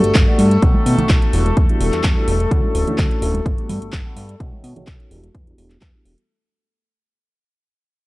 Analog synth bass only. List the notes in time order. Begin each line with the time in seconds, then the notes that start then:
0.04 G1
0.15 G1
0.39 G2
0.62 B1
0.86 B2
0.99 B1
1.10 B1
1.33 E1
1.57 E2
1.81 E1
1.93 E2
2.04 E2
2.28 E1
2.51 D2
2.75 D1
2.87 D2
2.98 D2
3.22 D1
3.46 G1
3.69 G2
3.82 G1
3.93 G1
4.16 G2
4.40 B1
4.64 B2
4.76 B1
4.87 B1
5.11 E1
5.35 E2
5.58 E1
5.82 E2
6.05 E1